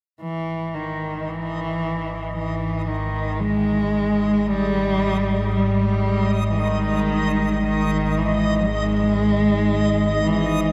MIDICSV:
0, 0, Header, 1, 5, 480
1, 0, Start_track
1, 0, Tempo, 1069519
1, 95, Time_signature, 4, 2, 24, 8
1, 1534, Tempo, 1052632
1, 4864, End_track
2, 0, Start_track
2, 0, Title_t, "Synth texture"
2, 0, Program_c, 0, 99
2, 85, Note_on_c, 0, 75, 72
2, 4864, Note_off_c, 0, 75, 0
2, 4864, End_track
3, 0, Start_track
3, 0, Title_t, "Ambient pad"
3, 0, Program_c, 1, 92
3, 93, Note_on_c, 1, 63, 75
3, 883, Note_on_c, 1, 68, 70
3, 1123, Note_on_c, 1, 75, 60
3, 4864, Note_off_c, 1, 63, 0
3, 4864, Note_off_c, 1, 68, 0
3, 4864, Note_off_c, 1, 75, 0
3, 4864, End_track
4, 0, Start_track
4, 0, Title_t, "Cello"
4, 0, Program_c, 2, 42
4, 92, Note_on_c, 2, 52, 80
4, 334, Note_on_c, 2, 51, 72
4, 341, Note_off_c, 2, 52, 0
4, 573, Note_on_c, 2, 52, 81
4, 580, Note_off_c, 2, 51, 0
4, 1055, Note_off_c, 2, 52, 0
4, 1059, Note_on_c, 2, 52, 78
4, 1290, Note_on_c, 2, 51, 76
4, 1297, Note_off_c, 2, 52, 0
4, 1523, Note_on_c, 2, 56, 91
4, 1530, Note_off_c, 2, 51, 0
4, 2011, Note_on_c, 2, 55, 98
4, 2018, Note_off_c, 2, 56, 0
4, 2493, Note_off_c, 2, 55, 0
4, 2504, Note_on_c, 2, 55, 79
4, 2928, Note_off_c, 2, 55, 0
4, 2942, Note_on_c, 2, 52, 59
4, 2977, Note_on_c, 2, 51, 83
4, 2984, Note_off_c, 2, 52, 0
4, 3452, Note_off_c, 2, 51, 0
4, 3455, Note_on_c, 2, 51, 81
4, 3704, Note_on_c, 2, 52, 76
4, 3711, Note_off_c, 2, 51, 0
4, 3928, Note_on_c, 2, 56, 99
4, 3935, Note_off_c, 2, 52, 0
4, 4642, Note_off_c, 2, 56, 0
4, 4645, Note_on_c, 2, 52, 78
4, 4864, Note_off_c, 2, 52, 0
4, 4864, End_track
5, 0, Start_track
5, 0, Title_t, "Synth drone"
5, 0, Program_c, 3, 95
5, 96, Note_on_c, 3, 32, 74
5, 103, Note_on_c, 3, 44, 67
5, 4864, Note_off_c, 3, 32, 0
5, 4864, Note_off_c, 3, 44, 0
5, 4864, End_track
0, 0, End_of_file